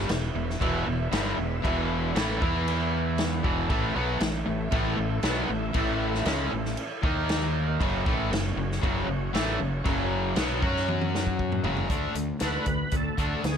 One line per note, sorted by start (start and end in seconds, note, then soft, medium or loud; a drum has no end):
0.00 3.65 E4 medium
0.00 3.65 B4 medium
0.00 3.65 E5 medium
0.09 0.33 E1 medium
0.09 0.30 E2 medium
0.09 0.30 B2 medium
0.09 snare loud
0.09 crash medium
0.34 0.58 E1 medium
0.34 0.56 E2 medium
0.34 0.56 B2 medium
0.50 snare soft
0.60 0.85 E1 medium
0.60 0.85 E2 medium
0.60 0.86 B2 medium
0.60 0.86 E3 loud
0.60 kick loud
0.60 crash medium
0.87 1.11 E1 medium
0.87 1.07 E2 medium
0.87 1.07 B2 medium
1.12 1.36 G1 medium
1.12 1.37 G2 medium
1.12 1.37 D3 loud
1.12 1.38 G3 loud
1.12 snare loud
1.12 crash medium
1.38 1.62 E1 medium
1.38 1.58 E2 medium
1.38 1.59 B2 medium
1.62 2.12 E1 loud
1.62 2.14 E2 medium
1.62 2.14 B2 loud
1.62 2.14 E3 loud
1.62 kick loud
1.62 crash medium
2.14 2.39 A1 medium
2.14 2.40 A2 medium
2.14 2.39 E3 medium
2.14 2.40 A3 medium
2.14 snare loud
2.14 crash medium
2.40 3.40 E2 medium
2.40 3.43 E3 medium
2.40 3.43 B3 medium
2.40 3.43 E4 loud
2.40 kick loud
2.68 crash medium
3.18 snare loud
3.18 crash medium
3.43 3.68 E1 medium
3.43 3.68 E2 medium
3.43 3.68 B2 loud
3.43 3.68 E3 medium
3.43 kick loud
3.69 3.94 A1 medium
3.69 3.94 A2 medium
3.69 3.94 E3 medium
3.69 3.95 A3 loud
3.69 7.01 E4 medium
3.69 7.01 A4 medium
3.69 7.01 E5 medium
3.69 kick loud
3.69 crash medium
3.95 4.19 B1 medium
3.95 4.20 B2 medium
3.95 4.20 F#3 medium
3.95 4.20 B3 loud
4.20 4.45 A1 medium
4.20 4.41 A2 medium
4.20 4.41 E3 medium
4.20 snare loud
4.20 crash medium
4.46 4.71 A1 medium
4.46 4.67 A2 medium
4.46 4.67 E3 medium
4.72 4.96 A1 medium
4.72 4.97 A2 medium
4.72 4.97 E3 loud
4.72 4.98 A3 medium
4.72 kick loud
4.72 crash medium
4.98 5.22 A1 medium
4.98 5.19 A2 medium
4.98 5.19 E3 medium
5.23 5.47 B1 medium
5.23 5.48 B2 medium
5.23 5.49 F#3 medium
5.23 5.49 B3 loud
5.23 snare loud
5.23 crash medium
5.48 5.73 A1 medium
5.48 5.69 A2 medium
5.48 5.70 E3 medium
5.73 6.22 A1 medium
5.73 6.25 A2 medium
5.73 6.25 E3 loud
5.73 6.25 A3 loud
5.73 kick medium
5.73 crash medium
6.14 snare soft
6.25 6.50 C#2 loud
6.25 6.50 C#3 medium
6.25 6.51 G#3 medium
6.25 6.51 C#4 medium
6.25 snare loud
6.25 crash medium
6.51 6.76 A1 medium
6.51 6.72 A2 medium
6.51 6.72 E3 medium
6.65 snare soft
6.77 crash medium
7.01 7.76 D#2 medium
7.01 7.79 D#3 medium
7.01 7.79 A#3 medium
7.01 7.78 D#4 medium
7.01 7.80 D#4 loud
7.01 7.79 A#4 medium
7.01 7.78 D#5 medium
7.01 kick loud
7.29 snare loud
7.29 crash medium
7.80 8.04 F#1 medium
7.80 8.05 F#2 medium
7.80 8.05 C#3 loud
7.80 8.05 F#3 loud
7.80 11.87 C#4 medium
7.80 11.86 F#4 medium
7.80 11.87 C#5 medium
7.80 kick loud
7.80 crash medium
8.05 8.30 A1 medium
8.05 8.30 A2 medium
8.05 8.31 E3 medium
8.05 8.31 A3 loud
8.05 kick loud
8.30 8.55 F#1 medium
8.30 8.52 F#2 medium
8.30 8.52 C#3 medium
8.30 snare loud
8.30 crash medium
8.56 8.80 F#1 medium
8.56 8.78 F#2 medium
8.56 8.78 C#3 medium
8.72 snare soft
8.81 9.06 F#1 loud
8.81 9.06 F#2 medium
8.81 9.07 C#3 medium
8.81 9.08 F#3 loud
8.81 kick loud
8.81 crash medium
9.07 9.31 F#1 medium
9.07 9.28 F#2 medium
9.07 9.29 C#3 medium
9.33 9.57 A1 medium
9.33 9.58 A2 medium
9.33 9.59 E3 loud
9.33 9.59 A3 loud
9.33 snare loud
9.33 crash medium
9.59 9.84 F#1 medium
9.59 9.79 F#2 medium
9.59 9.80 C#3 medium
9.84 10.33 F#1 medium
9.84 10.35 F#2 medium
9.84 10.35 C#3 loud
9.84 10.35 F#3 loud
9.84 kick medium
9.84 crash medium
10.36 10.60 B1 medium
10.36 10.61 B2 medium
10.36 10.60 F#3 medium
10.36 10.62 B3 loud
10.36 snare loud
10.36 crash medium
10.61 11.61 F#2 medium
10.61 11.63 F#3 medium
10.61 11.64 C#4 medium
10.61 11.64 F#4 loud
10.61 kick loud
10.76 snare soft
10.88 high tom medium
11.01 high tom medium
11.15 snare medium
11.27 kick medium
11.39 kick medium
11.52 mid tom medium
11.63 11.88 F#1 medium
11.63 11.89 F#2 medium
11.63 11.89 C#3 medium
11.63 11.89 F#3 medium
11.63 floor tom loud
11.77 floor tom medium
11.89 12.06 D2 medium
11.89 12.13 D3 medium
11.89 12.14 A3 medium
11.89 12.14 D4 medium
11.89 kick medium
11.89 closed hi-hat medium
12.14 12.31 D2 medium
12.14 12.38 D3 medium
12.14 12.38 A3 medium
12.14 closed hi-hat medium
12.40 12.57 D2 medium
12.40 12.64 D3 medium
12.40 12.65 A3 medium
12.40 12.66 D4 medium
12.40 snare medium
12.40 closed hi-hat medium
12.46 12.96 B4 medium
12.65 12.82 D2 medium
12.65 12.89 D3 medium
12.65 12.90 A3 medium
12.65 kick medium
12.65 closed hi-hat soft
12.91 13.08 D2 medium
12.91 13.15 D3 medium
12.91 13.16 A3 medium
12.91 kick loud
12.91 closed hi-hat medium
12.96 13.42 A4 medium
13.17 13.34 D2 medium
13.17 13.42 D3 medium
13.17 13.43 A3 medium
13.17 13.43 D4 medium
13.17 kick medium
13.17 closed hi-hat medium
13.44 13.58 D2 medium
13.44 13.58 D3 medium
13.44 13.58 A3 medium
13.44 13.58 G#4 medium
13.44 snare loud
13.44 closed hi-hat medium